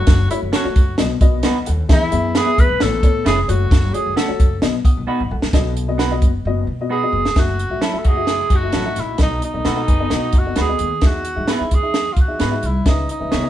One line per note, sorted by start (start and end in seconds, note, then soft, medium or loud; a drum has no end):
0.00 0.21 A3 medium
0.00 0.21 F#4 medium
0.00 0.30 F#4 loud
0.00 0.22 C#5 medium
0.07 0.26 F#1 loud
0.07 kick loud
0.07 snare loud
0.07 closed hi-hat loud
0.30 0.48 A3 medium
0.30 0.41 E4 medium
0.30 0.48 F#4 medium
0.30 0.48 C#5 medium
0.30 closed hi-hat medium
0.43 0.51 F#1 loud
0.52 0.66 C#4 medium
0.52 0.66 F#4 medium
0.52 0.97 F#4 medium
0.52 0.66 A4 medium
0.52 0.67 C#5 medium
0.52 snare loud
0.52 closed hi-hat medium
0.64 0.82 A3 medium
0.64 0.82 F#4 medium
0.64 0.82 C#5 medium
0.64 muted upright bass stroke soft
0.76 0.94 F#1 medium
0.76 kick medium
0.76 closed hi-hat medium
0.98 1.17 B1 loud
0.98 1.63 B2 medium
0.98 1.10 B3 medium
0.98 1.10 F#4 medium
0.98 1.11 D#5 medium
0.98 snare loud
0.98 closed hi-hat medium
1.21 1.39 B1 loud
1.21 1.45 B3 medium
1.21 1.45 F#4 medium
1.21 1.43 D#5 medium
1.21 kick loud
1.21 closed hi-hat medium
1.43 1.63 D2 loud
1.43 1.57 B3 medium
1.43 1.57 D#4 medium
1.43 1.57 F#4 loud
1.43 1.57 B4 loud
1.43 1.66 D#5 medium
1.43 1.66 B5 medium
1.43 snare loud
1.43 closed hi-hat medium
1.66 1.86 D#2 loud
1.66 2.10 A4 medium
1.66 2.10 F#5 medium
1.66 closed hi-hat medium
1.89 2.08 E2 loud
1.89 2.53 E3 medium
1.89 2.01 B3 medium
1.89 2.01 G#4 medium
1.89 2.01 E5 medium
1.89 kick loud
1.89 snare loud
1.89 closed hi-hat medium
1.93 2.38 E4 loud
2.11 2.40 F#2 medium
2.11 2.30 B3 medium
2.11 2.30 G#4 medium
2.11 2.30 E5 medium
2.11 closed hi-hat medium
2.35 2.48 B3 medium
2.35 2.48 E4 medium
2.35 2.49 G#4 loud
2.35 2.61 G#4 loud
2.35 2.49 B4 loud
2.35 snare loud
2.35 closed hi-hat medium
2.46 2.64 B3 medium
2.46 2.64 G#4 medium
2.46 2.64 E5 medium
2.58 2.67 E2 medium
2.58 2.84 B4 loud
2.58 kick medium
2.58 closed hi-hat medium
2.69 2.78 B1 medium
2.80 2.99 A1 loud
2.80 3.45 A2 medium
2.80 2.92 B3 medium
2.80 2.92 A4 medium
2.80 3.27 A4 loud
2.80 2.92 C#5 medium
2.80 snare loud
2.80 closed hi-hat medium
3.03 3.22 A2 loud
3.03 3.27 B3 medium
3.03 3.27 A4 medium
3.03 3.27 C#5 medium
3.03 kick loud
3.03 closed hi-hat medium
3.25 3.44 F1 loud
3.25 3.39 A3 medium
3.25 3.39 C#4 medium
3.25 3.39 E4 medium
3.25 3.42 G#4 medium
3.25 3.39 B4 medium
3.25 snare loud
3.25 closed hi-hat medium
3.42 3.50 G#4 medium
3.48 3.67 F#1 loud
3.48 3.85 A3 medium
3.48 3.85 F#4 medium
3.48 3.95 F#4 loud
3.48 3.85 C#5 medium
3.48 closed hi-hat medium
3.71 3.90 F#1 loud
3.71 kick loud
3.71 snare loud
3.71 closed hi-hat medium
3.94 4.12 A3 medium
3.94 4.12 F#4 medium
3.94 4.16 G#4 medium
3.94 4.12 C#5 medium
3.94 closed hi-hat medium
4.06 4.15 F#1 medium
4.16 4.30 A3 medium
4.16 4.30 C#4 medium
4.16 4.30 F#4 medium
4.16 4.60 A4 medium
4.16 4.30 A4 medium
4.16 snare loud
4.16 closed hi-hat medium
4.28 4.46 A3 medium
4.28 4.46 F#4 medium
4.28 4.46 C#5 medium
4.28 muted upright bass stroke medium
4.40 4.58 F#1 medium
4.40 kick medium
4.40 closed hi-hat medium
4.62 4.80 B1 medium
4.62 5.27 B2 medium
4.62 4.74 B3 medium
4.62 4.74 F#4 medium
4.62 4.75 D#5 medium
4.62 snare loud
4.62 closed hi-hat medium
4.85 5.07 F#5 medium
4.85 5.07 D#6 medium
4.85 muted upright bass stroke soft
4.85 kick medium
4.85 closed hi-hat medium
4.97 5.06 B1 medium
5.07 5.21 B3 medium
5.07 5.21 D#4 medium
5.07 5.21 F#4 medium
5.07 5.21 B4 medium
5.07 5.30 D#5 medium
5.07 5.30 B5 medium
5.20 5.29 A1 medium
5.31 5.40 A1 medium
5.31 5.75 A4 medium
5.31 5.75 F#5 medium
5.42 5.52 A#1 medium
5.42 snare loud
5.53 6.19 B1 loud
5.53 6.19 B2 medium
5.53 5.72 B3 medium
5.53 5.72 F#4 medium
5.53 5.72 D#5 medium
5.53 kick loud
5.53 snare loud
5.53 closed hi-hat medium
5.77 closed hi-hat medium
5.88 6.00 B3 medium
5.88 6.00 F#4 medium
5.88 6.00 D#5 medium
5.98 6.12 B3 medium
5.98 6.12 D#4 medium
5.98 6.12 F#4 medium
5.98 6.12 B4 loud
5.98 snare loud
5.98 closed hi-hat medium
6.11 6.29 B3 medium
6.11 6.29 F#4 medium
6.11 6.29 D#5 medium
6.22 6.40 F#1 medium
6.22 kick medium
6.22 closed hi-hat medium
6.45 6.63 F#1 medium
6.45 6.64 B3 medium
6.45 6.64 F#4 medium
6.45 6.64 D#5 medium
6.67 7.04 B2 medium
6.81 6.92 B3 medium
6.81 6.92 F#4 medium
6.81 6.92 D#5 medium
6.90 7.03 B3 medium
6.90 7.04 D#4 medium
6.90 7.04 F#4 medium
6.90 7.40 G#4 medium
6.90 7.04 B4 medium
7.03 7.20 B3 medium
7.03 7.20 F#4 medium
7.03 7.21 D#5 medium
7.12 7.31 F1 medium
7.25 snare medium
7.36 7.64 F#1 loud
7.36 7.54 A3 medium
7.36 7.54 F#4 medium
7.36 7.83 F#4 loud
7.36 7.55 E5 medium
7.36 kick loud
7.36 snare loud
7.36 closed hi-hat medium
7.59 closed hi-hat medium
7.70 7.79 A1 medium
7.70 7.83 A3 medium
7.70 7.83 F#4 medium
7.70 7.83 E5 medium
7.81 7.95 F#3 medium
7.81 7.95 C#4 medium
7.81 7.95 E4 medium
7.81 8.00 E4 medium
7.81 7.95 A4 medium
7.81 snare loud
7.81 closed hi-hat medium
7.93 8.06 A3 medium
7.93 8.06 F#4 medium
7.93 8.06 E5 medium
7.93 muted upright bass stroke soft
7.99 8.10 A4 medium
8.04 8.41 F#1 medium
8.04 8.27 D#4 medium
8.04 8.26 F#4 medium
8.04 kick medium
8.04 closed hi-hat medium
8.08 8.57 G#4 loud
8.17 8.40 A3 medium
8.17 8.41 F#4 medium
8.17 8.41 E5 medium
8.27 8.50 E4 medium
8.27 8.49 G#4 medium
8.27 snare loud
8.27 closed hi-hat medium
8.50 8.69 F#1 medium
8.50 9.16 D#4 medium
8.50 9.16 F#4 medium
8.50 kick medium
8.50 closed hi-hat medium
8.55 9.02 F#4 loud
8.63 8.74 A3 medium
8.63 8.75 F#4 medium
8.63 8.75 E5 medium
8.72 8.92 A1 medium
8.72 8.87 F#3 medium
8.72 8.87 C#4 medium
8.72 8.87 E4 medium
8.72 8.87 A4 medium
8.72 snare loud
8.72 closed hi-hat medium
8.85 9.03 A3 medium
8.85 9.03 F#4 medium
8.85 9.03 E5 medium
8.96 9.15 A#1 medium
8.96 snare soft
8.96 closed hi-hat medium
9.00 9.21 E4 medium
9.18 9.37 B1 loud
9.18 9.84 B2 medium
9.18 9.37 B3 medium
9.18 9.37 A4 medium
9.18 9.37 D#5 medium
9.18 kick loud
9.18 snare loud
9.18 closed hi-hat medium
9.22 9.42 D#4 medium
9.42 10.40 D#4 medium
9.42 closed hi-hat medium
9.54 9.63 B1 medium
9.54 9.66 B3 medium
9.54 9.66 A4 medium
9.54 9.66 D#5 medium
9.65 9.83 B2 medium
9.65 9.78 A3 medium
9.65 9.78 D#4 medium
9.65 9.87 F#4 medium
9.65 9.79 F#4 medium
9.65 9.87 A4 medium
9.65 9.79 B4 medium
9.65 snare loud
9.65 closed hi-hat medium
9.76 9.88 B3 medium
9.76 9.89 A4 medium
9.76 9.89 F#5 medium
9.87 10.06 F#1 medium
9.87 10.09 G#4 medium
9.87 10.10 B4 medium
9.87 kick medium
9.87 closed hi-hat medium
10.00 10.23 B3 medium
10.00 10.24 A4 medium
10.00 10.24 D#5 medium
10.10 10.29 B2 medium
10.10 10.76 D#4 medium
10.10 10.76 F#4 medium
10.10 snare loud
10.10 closed hi-hat medium
10.33 10.52 F#1 medium
10.33 kick medium
10.33 closed hi-hat medium
10.39 10.59 F#4 medium
10.46 10.58 B3 medium
10.46 10.58 A4 medium
10.46 10.58 D#5 medium
10.56 10.75 D2 medium
10.56 10.70 A3 medium
10.56 10.70 D#4 medium
10.56 10.70 F#4 medium
10.56 10.70 B4 medium
10.56 snare loud
10.56 closed hi-hat medium
10.61 11.07 G#4 medium
10.69 10.86 B3 medium
10.69 10.86 A4 medium
10.69 10.87 D#5 medium
10.79 10.98 D#2 medium
10.79 closed hi-hat medium
11.01 11.30 E2 loud
11.01 11.67 E3 medium
11.01 11.20 D#4 medium
11.01 11.21 G#4 medium
11.01 11.21 E5 medium
11.01 kick loud
11.01 snare loud
11.01 closed hi-hat medium
11.06 11.50 F#4 loud
11.25 closed hi-hat medium
11.35 11.46 G#2 medium
11.35 11.48 D#4 medium
11.35 11.48 G#4 medium
11.35 11.48 E5 medium
11.48 11.61 B3 medium
11.48 11.61 D#4 medium
11.48 11.62 G#4 medium
11.48 11.62 B4 medium
11.48 snare loud
11.48 closed hi-hat medium
11.52 11.76 E4 medium
11.58 11.71 D#4 medium
11.58 11.71 G#4 medium
11.58 11.71 E5 medium
11.58 muted upright bass stroke soft
11.71 12.08 E2 medium
11.71 12.14 G#4 loud
11.71 kick medium
11.71 closed hi-hat medium
11.82 12.06 D#4 medium
11.82 12.06 G#4 medium
11.82 12.06 E5 medium
11.94 snare loud
11.94 closed hi-hat medium
12.13 12.23 F4 medium
12.13 closed hi-hat medium
12.17 12.35 E2 medium
12.17 kick medium
12.21 12.68 F#4 medium
12.28 12.40 D#4 medium
12.28 12.40 G#4 medium
12.28 12.40 E5 medium
12.39 12.58 G#2 medium
12.39 12.53 B3 medium
12.39 12.53 D#4 medium
12.39 12.53 G#4 medium
12.39 12.53 B4 medium
12.39 snare medium
12.39 closed hi-hat medium
12.51 12.69 D#4 medium
12.51 12.69 G#4 medium
12.51 12.69 E5 medium
12.63 12.81 C2 medium
12.63 12.87 E4 medium
12.63 closed hi-hat medium
12.85 13.04 C#2 loud
12.85 13.50 C#3 medium
12.85 13.03 C#4 medium
12.85 13.08 D#4 medium
12.85 13.04 B4 medium
12.85 13.04 E5 medium
12.85 kick loud
12.85 snare loud
12.85 closed hi-hat medium
13.09 13.50 D#4 medium
13.09 closed hi-hat medium
13.20 13.35 C#2 medium
13.20 13.32 C#4 medium
13.20 13.32 B4 medium
13.20 13.32 E5 medium
13.31 13.50 C#3 medium
13.31 13.44 B3 medium
13.31 13.45 E4 medium
13.31 13.45 G#4 medium
13.31 13.45 C#5 medium
13.31 snare loud
13.31 closed hi-hat medium
13.42 13.50 C#4 medium
13.42 13.50 B4 medium
13.42 13.50 E5 medium